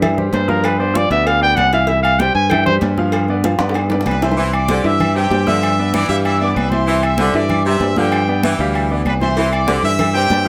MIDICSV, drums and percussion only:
0, 0, Header, 1, 2, 480
1, 0, Start_track
1, 0, Key_signature, 0, "major"
1, 0, Tempo, 311688
1, 989, Time_signature, 4, 2, 24, 8
1, 16139, End_track
2, 0, Start_track
2, 0, Title_t, "Drums"
2, 36, Note_on_c, 9, 56, 113
2, 36, Note_on_c, 9, 75, 65
2, 37, Note_on_c, 9, 63, 38
2, 37, Note_on_c, 9, 64, 90
2, 37, Note_on_c, 9, 68, 110
2, 190, Note_off_c, 9, 56, 0
2, 190, Note_off_c, 9, 75, 0
2, 191, Note_off_c, 9, 63, 0
2, 191, Note_off_c, 9, 64, 0
2, 191, Note_off_c, 9, 68, 0
2, 277, Note_on_c, 9, 63, 33
2, 277, Note_on_c, 9, 64, 64
2, 431, Note_off_c, 9, 63, 0
2, 431, Note_off_c, 9, 64, 0
2, 503, Note_on_c, 9, 56, 74
2, 516, Note_on_c, 9, 63, 89
2, 521, Note_on_c, 9, 66, 90
2, 521, Note_on_c, 9, 68, 82
2, 657, Note_off_c, 9, 56, 0
2, 670, Note_off_c, 9, 63, 0
2, 675, Note_off_c, 9, 66, 0
2, 675, Note_off_c, 9, 68, 0
2, 747, Note_on_c, 9, 63, 81
2, 901, Note_off_c, 9, 63, 0
2, 981, Note_on_c, 9, 56, 120
2, 990, Note_on_c, 9, 75, 68
2, 992, Note_on_c, 9, 63, 39
2, 998, Note_on_c, 9, 68, 110
2, 1135, Note_off_c, 9, 56, 0
2, 1144, Note_off_c, 9, 75, 0
2, 1146, Note_off_c, 9, 63, 0
2, 1152, Note_off_c, 9, 68, 0
2, 1235, Note_on_c, 9, 63, 39
2, 1389, Note_off_c, 9, 63, 0
2, 1468, Note_on_c, 9, 56, 73
2, 1469, Note_on_c, 9, 63, 96
2, 1474, Note_on_c, 9, 66, 56
2, 1474, Note_on_c, 9, 68, 88
2, 1622, Note_off_c, 9, 56, 0
2, 1623, Note_off_c, 9, 63, 0
2, 1628, Note_off_c, 9, 66, 0
2, 1628, Note_off_c, 9, 68, 0
2, 1708, Note_on_c, 9, 56, 69
2, 1714, Note_on_c, 9, 63, 36
2, 1862, Note_off_c, 9, 56, 0
2, 1868, Note_off_c, 9, 63, 0
2, 1949, Note_on_c, 9, 75, 57
2, 1951, Note_on_c, 9, 68, 99
2, 1952, Note_on_c, 9, 56, 110
2, 1956, Note_on_c, 9, 63, 34
2, 2103, Note_off_c, 9, 75, 0
2, 2105, Note_off_c, 9, 68, 0
2, 2106, Note_off_c, 9, 56, 0
2, 2110, Note_off_c, 9, 63, 0
2, 2192, Note_on_c, 9, 63, 34
2, 2346, Note_off_c, 9, 63, 0
2, 2416, Note_on_c, 9, 56, 74
2, 2422, Note_on_c, 9, 75, 62
2, 2426, Note_on_c, 9, 63, 78
2, 2432, Note_on_c, 9, 66, 81
2, 2432, Note_on_c, 9, 68, 94
2, 2570, Note_off_c, 9, 56, 0
2, 2576, Note_off_c, 9, 75, 0
2, 2580, Note_off_c, 9, 63, 0
2, 2586, Note_off_c, 9, 66, 0
2, 2586, Note_off_c, 9, 68, 0
2, 2659, Note_on_c, 9, 56, 82
2, 2666, Note_on_c, 9, 68, 80
2, 2813, Note_off_c, 9, 56, 0
2, 2820, Note_off_c, 9, 68, 0
2, 2881, Note_on_c, 9, 56, 123
2, 2904, Note_on_c, 9, 63, 34
2, 3035, Note_off_c, 9, 56, 0
2, 3058, Note_off_c, 9, 63, 0
2, 3134, Note_on_c, 9, 75, 68
2, 3139, Note_on_c, 9, 63, 35
2, 3153, Note_on_c, 9, 68, 114
2, 3288, Note_off_c, 9, 75, 0
2, 3293, Note_off_c, 9, 63, 0
2, 3307, Note_off_c, 9, 68, 0
2, 3379, Note_on_c, 9, 56, 72
2, 3384, Note_on_c, 9, 63, 100
2, 3402, Note_on_c, 9, 66, 61
2, 3402, Note_on_c, 9, 68, 69
2, 3533, Note_off_c, 9, 56, 0
2, 3538, Note_off_c, 9, 63, 0
2, 3556, Note_off_c, 9, 66, 0
2, 3556, Note_off_c, 9, 68, 0
2, 3844, Note_on_c, 9, 56, 112
2, 3854, Note_on_c, 9, 75, 68
2, 3867, Note_on_c, 9, 63, 34
2, 3867, Note_on_c, 9, 64, 87
2, 3870, Note_on_c, 9, 68, 108
2, 3998, Note_off_c, 9, 56, 0
2, 4008, Note_off_c, 9, 75, 0
2, 4021, Note_off_c, 9, 63, 0
2, 4021, Note_off_c, 9, 64, 0
2, 4024, Note_off_c, 9, 68, 0
2, 4103, Note_on_c, 9, 63, 30
2, 4103, Note_on_c, 9, 64, 74
2, 4257, Note_off_c, 9, 63, 0
2, 4257, Note_off_c, 9, 64, 0
2, 4331, Note_on_c, 9, 56, 78
2, 4341, Note_on_c, 9, 63, 89
2, 4350, Note_on_c, 9, 66, 84
2, 4350, Note_on_c, 9, 68, 82
2, 4485, Note_off_c, 9, 56, 0
2, 4495, Note_off_c, 9, 63, 0
2, 4504, Note_off_c, 9, 66, 0
2, 4504, Note_off_c, 9, 68, 0
2, 4582, Note_on_c, 9, 63, 86
2, 4736, Note_off_c, 9, 63, 0
2, 4809, Note_on_c, 9, 56, 116
2, 4815, Note_on_c, 9, 75, 63
2, 4823, Note_on_c, 9, 68, 106
2, 4826, Note_on_c, 9, 63, 40
2, 4963, Note_off_c, 9, 56, 0
2, 4969, Note_off_c, 9, 75, 0
2, 4977, Note_off_c, 9, 68, 0
2, 4980, Note_off_c, 9, 63, 0
2, 5058, Note_on_c, 9, 63, 39
2, 5212, Note_off_c, 9, 63, 0
2, 5297, Note_on_c, 9, 63, 100
2, 5303, Note_on_c, 9, 56, 69
2, 5313, Note_on_c, 9, 66, 62
2, 5313, Note_on_c, 9, 68, 85
2, 5451, Note_off_c, 9, 63, 0
2, 5457, Note_off_c, 9, 56, 0
2, 5467, Note_off_c, 9, 66, 0
2, 5467, Note_off_c, 9, 68, 0
2, 5524, Note_on_c, 9, 56, 72
2, 5524, Note_on_c, 9, 60, 100
2, 5547, Note_on_c, 9, 65, 106
2, 5678, Note_off_c, 9, 56, 0
2, 5678, Note_off_c, 9, 60, 0
2, 5687, Note_on_c, 9, 60, 99
2, 5701, Note_off_c, 9, 65, 0
2, 5765, Note_on_c, 9, 56, 115
2, 5779, Note_on_c, 9, 65, 86
2, 5779, Note_on_c, 9, 68, 108
2, 5780, Note_on_c, 9, 63, 36
2, 5780, Note_on_c, 9, 75, 67
2, 5841, Note_off_c, 9, 60, 0
2, 5919, Note_off_c, 9, 56, 0
2, 5933, Note_off_c, 9, 65, 0
2, 5933, Note_off_c, 9, 68, 0
2, 5934, Note_off_c, 9, 63, 0
2, 5934, Note_off_c, 9, 75, 0
2, 6002, Note_on_c, 9, 61, 120
2, 6013, Note_on_c, 9, 63, 32
2, 6032, Note_on_c, 9, 65, 81
2, 6156, Note_off_c, 9, 61, 0
2, 6167, Note_off_c, 9, 63, 0
2, 6172, Note_on_c, 9, 61, 91
2, 6186, Note_off_c, 9, 65, 0
2, 6249, Note_on_c, 9, 56, 82
2, 6251, Note_on_c, 9, 63, 88
2, 6264, Note_on_c, 9, 66, 69
2, 6264, Note_on_c, 9, 68, 98
2, 6266, Note_on_c, 9, 75, 62
2, 6326, Note_off_c, 9, 61, 0
2, 6331, Note_on_c, 9, 61, 86
2, 6403, Note_off_c, 9, 56, 0
2, 6405, Note_off_c, 9, 63, 0
2, 6418, Note_off_c, 9, 66, 0
2, 6418, Note_off_c, 9, 68, 0
2, 6420, Note_off_c, 9, 75, 0
2, 6485, Note_off_c, 9, 61, 0
2, 6502, Note_on_c, 9, 56, 75
2, 6502, Note_on_c, 9, 61, 96
2, 6509, Note_on_c, 9, 66, 85
2, 6509, Note_on_c, 9, 68, 84
2, 6646, Note_off_c, 9, 61, 0
2, 6646, Note_on_c, 9, 61, 101
2, 6656, Note_off_c, 9, 56, 0
2, 6663, Note_off_c, 9, 66, 0
2, 6663, Note_off_c, 9, 68, 0
2, 6729, Note_on_c, 9, 63, 39
2, 6800, Note_off_c, 9, 61, 0
2, 6883, Note_off_c, 9, 63, 0
2, 6970, Note_on_c, 9, 63, 35
2, 6983, Note_on_c, 9, 75, 73
2, 6984, Note_on_c, 9, 68, 110
2, 7124, Note_off_c, 9, 63, 0
2, 7137, Note_off_c, 9, 75, 0
2, 7138, Note_off_c, 9, 68, 0
2, 7214, Note_on_c, 9, 63, 101
2, 7223, Note_on_c, 9, 66, 65
2, 7223, Note_on_c, 9, 68, 77
2, 7368, Note_off_c, 9, 63, 0
2, 7377, Note_off_c, 9, 66, 0
2, 7377, Note_off_c, 9, 68, 0
2, 7703, Note_on_c, 9, 63, 37
2, 7703, Note_on_c, 9, 64, 91
2, 7707, Note_on_c, 9, 68, 119
2, 7711, Note_on_c, 9, 75, 66
2, 7857, Note_off_c, 9, 63, 0
2, 7857, Note_off_c, 9, 64, 0
2, 7861, Note_off_c, 9, 68, 0
2, 7865, Note_off_c, 9, 75, 0
2, 7943, Note_on_c, 9, 63, 34
2, 8097, Note_off_c, 9, 63, 0
2, 8182, Note_on_c, 9, 63, 76
2, 8189, Note_on_c, 9, 66, 75
2, 8189, Note_on_c, 9, 68, 82
2, 8336, Note_off_c, 9, 63, 0
2, 8343, Note_off_c, 9, 66, 0
2, 8343, Note_off_c, 9, 68, 0
2, 8421, Note_on_c, 9, 63, 84
2, 8575, Note_off_c, 9, 63, 0
2, 8669, Note_on_c, 9, 63, 37
2, 8672, Note_on_c, 9, 68, 110
2, 8673, Note_on_c, 9, 75, 71
2, 8823, Note_off_c, 9, 63, 0
2, 8826, Note_off_c, 9, 68, 0
2, 8827, Note_off_c, 9, 75, 0
2, 8912, Note_on_c, 9, 63, 37
2, 9066, Note_off_c, 9, 63, 0
2, 9144, Note_on_c, 9, 63, 99
2, 9151, Note_on_c, 9, 66, 65
2, 9151, Note_on_c, 9, 68, 79
2, 9298, Note_off_c, 9, 63, 0
2, 9305, Note_off_c, 9, 66, 0
2, 9305, Note_off_c, 9, 68, 0
2, 9393, Note_on_c, 9, 63, 35
2, 9547, Note_off_c, 9, 63, 0
2, 9627, Note_on_c, 9, 68, 106
2, 9633, Note_on_c, 9, 63, 39
2, 9635, Note_on_c, 9, 75, 57
2, 9781, Note_off_c, 9, 68, 0
2, 9787, Note_off_c, 9, 63, 0
2, 9789, Note_off_c, 9, 75, 0
2, 9871, Note_on_c, 9, 63, 33
2, 10025, Note_off_c, 9, 63, 0
2, 10112, Note_on_c, 9, 63, 76
2, 10116, Note_on_c, 9, 75, 61
2, 10120, Note_on_c, 9, 66, 76
2, 10120, Note_on_c, 9, 68, 89
2, 10266, Note_off_c, 9, 63, 0
2, 10270, Note_off_c, 9, 75, 0
2, 10274, Note_off_c, 9, 66, 0
2, 10274, Note_off_c, 9, 68, 0
2, 10344, Note_on_c, 9, 63, 72
2, 10346, Note_on_c, 9, 68, 91
2, 10498, Note_off_c, 9, 63, 0
2, 10500, Note_off_c, 9, 68, 0
2, 10584, Note_on_c, 9, 63, 39
2, 10738, Note_off_c, 9, 63, 0
2, 10823, Note_on_c, 9, 63, 36
2, 10827, Note_on_c, 9, 68, 116
2, 10828, Note_on_c, 9, 75, 68
2, 10977, Note_off_c, 9, 63, 0
2, 10981, Note_off_c, 9, 68, 0
2, 10982, Note_off_c, 9, 75, 0
2, 11054, Note_on_c, 9, 63, 101
2, 11068, Note_on_c, 9, 66, 63
2, 11068, Note_on_c, 9, 68, 72
2, 11208, Note_off_c, 9, 63, 0
2, 11222, Note_off_c, 9, 66, 0
2, 11222, Note_off_c, 9, 68, 0
2, 11540, Note_on_c, 9, 63, 38
2, 11540, Note_on_c, 9, 64, 86
2, 11548, Note_on_c, 9, 68, 100
2, 11558, Note_on_c, 9, 75, 67
2, 11694, Note_off_c, 9, 63, 0
2, 11694, Note_off_c, 9, 64, 0
2, 11702, Note_off_c, 9, 68, 0
2, 11712, Note_off_c, 9, 75, 0
2, 11777, Note_on_c, 9, 63, 31
2, 11931, Note_off_c, 9, 63, 0
2, 12021, Note_on_c, 9, 63, 80
2, 12027, Note_on_c, 9, 66, 86
2, 12027, Note_on_c, 9, 68, 91
2, 12175, Note_off_c, 9, 63, 0
2, 12181, Note_off_c, 9, 66, 0
2, 12181, Note_off_c, 9, 68, 0
2, 12262, Note_on_c, 9, 63, 84
2, 12416, Note_off_c, 9, 63, 0
2, 12503, Note_on_c, 9, 68, 108
2, 12513, Note_on_c, 9, 75, 73
2, 12657, Note_off_c, 9, 68, 0
2, 12667, Note_off_c, 9, 75, 0
2, 12746, Note_on_c, 9, 63, 35
2, 12900, Note_off_c, 9, 63, 0
2, 12987, Note_on_c, 9, 66, 62
2, 12987, Note_on_c, 9, 68, 86
2, 12989, Note_on_c, 9, 63, 102
2, 13141, Note_off_c, 9, 66, 0
2, 13141, Note_off_c, 9, 68, 0
2, 13143, Note_off_c, 9, 63, 0
2, 13461, Note_on_c, 9, 75, 60
2, 13466, Note_on_c, 9, 63, 41
2, 13478, Note_on_c, 9, 68, 103
2, 13615, Note_off_c, 9, 75, 0
2, 13620, Note_off_c, 9, 63, 0
2, 13632, Note_off_c, 9, 68, 0
2, 13713, Note_on_c, 9, 63, 31
2, 13867, Note_off_c, 9, 63, 0
2, 13949, Note_on_c, 9, 63, 81
2, 13949, Note_on_c, 9, 75, 62
2, 13963, Note_on_c, 9, 66, 76
2, 13963, Note_on_c, 9, 68, 89
2, 14103, Note_off_c, 9, 63, 0
2, 14103, Note_off_c, 9, 75, 0
2, 14117, Note_off_c, 9, 66, 0
2, 14117, Note_off_c, 9, 68, 0
2, 14190, Note_on_c, 9, 63, 70
2, 14215, Note_on_c, 9, 68, 83
2, 14344, Note_off_c, 9, 63, 0
2, 14369, Note_off_c, 9, 68, 0
2, 14426, Note_on_c, 9, 56, 122
2, 14580, Note_off_c, 9, 56, 0
2, 14667, Note_on_c, 9, 63, 38
2, 14670, Note_on_c, 9, 75, 75
2, 14676, Note_on_c, 9, 68, 112
2, 14821, Note_off_c, 9, 63, 0
2, 14824, Note_off_c, 9, 75, 0
2, 14830, Note_off_c, 9, 68, 0
2, 14904, Note_on_c, 9, 63, 96
2, 14911, Note_on_c, 9, 56, 78
2, 14930, Note_on_c, 9, 66, 67
2, 14930, Note_on_c, 9, 68, 69
2, 15058, Note_off_c, 9, 63, 0
2, 15065, Note_off_c, 9, 56, 0
2, 15084, Note_off_c, 9, 66, 0
2, 15084, Note_off_c, 9, 68, 0
2, 15385, Note_on_c, 9, 63, 39
2, 15385, Note_on_c, 9, 64, 87
2, 15388, Note_on_c, 9, 75, 65
2, 15394, Note_on_c, 9, 56, 110
2, 15408, Note_on_c, 9, 68, 96
2, 15539, Note_off_c, 9, 63, 0
2, 15539, Note_off_c, 9, 64, 0
2, 15542, Note_off_c, 9, 75, 0
2, 15548, Note_off_c, 9, 56, 0
2, 15562, Note_off_c, 9, 68, 0
2, 15622, Note_on_c, 9, 63, 34
2, 15776, Note_off_c, 9, 63, 0
2, 15858, Note_on_c, 9, 56, 72
2, 15866, Note_on_c, 9, 63, 84
2, 15882, Note_on_c, 9, 66, 81
2, 15882, Note_on_c, 9, 68, 82
2, 16012, Note_off_c, 9, 56, 0
2, 16020, Note_off_c, 9, 63, 0
2, 16036, Note_off_c, 9, 66, 0
2, 16036, Note_off_c, 9, 68, 0
2, 16139, End_track
0, 0, End_of_file